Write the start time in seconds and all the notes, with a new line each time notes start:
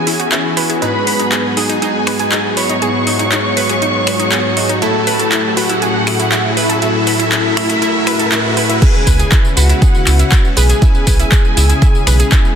Already playing: E3 B3 C#4 E4 F#4 G#4 G#5, riser
0.07 E4, open hi-hat
0.20 F#4, closed hi-hat
0.32 E3 C#4 E4 F#4, clap, closed hi-hat
0.57 B4, open hi-hat
0.69 G#4, closed hi-hat
0.82 G#2 F#3 B3 D#4 F#4 G#4 B4 B5, closed hi-hat
1.07 B4, open hi-hat
1.19 D#4, closed hi-hat
1.32 G#4, clap, closed hi-hat
1.57 G#2 B3 D#4 F#4 G#4 G#5, open hi-hat
1.69 D#4, closed hi-hat
1.82 D#4, closed hi-hat
2.07 B4, finger snap, open hi-hat
2.19 G#4, closed hi-hat
2.32 D#4, clap, closed hi-hat
2.57 B4 C#5 C#6, open hi-hat
2.69 D#4, closed hi-hat
2.82 G#2 B3 F#4 G#4, closed hi-hat
3.07 D#4, open hi-hat
3.19 D#4, closed hi-hat
3.32 D#4, clap, closed hi-hat
3.57 G#2 B3 F#4 G#4 B4, open hi-hat
3.69 G#4, closed hi-hat
3.82 D#4, closed hi-hat
4.07 B4, finger snap, open hi-hat
4.19 D#4, closed hi-hat
4.32 G#4, clap, closed hi-hat
4.57 D#4, open hi-hat
4.69 D#4, closed hi-hat
4.82 A2 A3 C#4 E4 F#4 A4 A5, closed hi-hat
5.07 B4, open hi-hat
5.19 A4, closed hi-hat
5.32 E4, clap, closed hi-hat
5.57 A2 A3 E4 F#4 B4 F#5, open hi-hat
5.69 E4, closed hi-hat
5.82 G#4, closed hi-hat
6.07 E4, finger snap, open hi-hat
6.19 E4, closed hi-hat
6.32 E4, clap, closed hi-hat
6.57 E4 B4 E5, open hi-hat
6.69 A4, closed hi-hat
6.82 A2 A3 E4 F#4 G#4, closed hi-hat
7.07 B4, open hi-hat
7.19 E4, closed hi-hat
7.32 G#4, clap, closed hi-hat
7.57 A2 A3 E4 F#4, finger snap, open hi-hat
7.69 E4, closed hi-hat
7.82 E4, closed hi-hat
8.07 B4, finger snap, open hi-hat
8.19 A4, closed hi-hat
8.32 A2 A3 E4 F#4, clap, closed hi-hat
8.57 B4, open hi-hat
8.69 E4, closed hi-hat
8.82 C#3 G#3 B3 C#4 E4 G#4 B4 G#5, kick, closed hi-hat, crash, tambourine
8.95 tambourine
9.07 C#2 B4, kick, open hi-hat, tambourine
9.20 G#4, closed hi-hat, tambourine
9.32 E4, kick, clap, closed hi-hat, tambourine
9.45 tambourine
9.57 C#2 C#3 C#4 E4 F#4 B4 F#5, open hi-hat, tambourine
9.69 E4, closed hi-hat, tambourine
9.82 G#4, kick, closed hi-hat, tambourine
9.95 tambourine
10.07 C#2 E4, finger snap, clap, open hi-hat, tambourine
10.19 E4, closed hi-hat, tambourine
10.32 E4, kick, clap, closed hi-hat, tambourine
10.45 tambourine
10.57 B1 G#4 B4 G#5, open hi-hat, tambourine
10.70 G#4, closed hi-hat, tambourine
10.82 C#3 C#4 E4 B4, kick, closed hi-hat, tambourine
10.95 tambourine
11.07 B1 B4, kick, open hi-hat, tambourine
11.20 E4, closed hi-hat, tambourine
11.32 G#4, kick, clap, closed hi-hat, tambourine
11.45 tambourine
11.57 C#2 C#3 C#4 E4 G#4, open hi-hat, tambourine
11.70 E4, closed hi-hat, tambourine
11.82 E4, kick, closed hi-hat, tambourine
11.95 tambourine
12.07 B1 B4, finger snap, open hi-hat, tambourine
12.20 G#4, closed hi-hat, tambourine
12.32 E4, kick, clap, closed hi-hat, tambourine
12.45 tambourine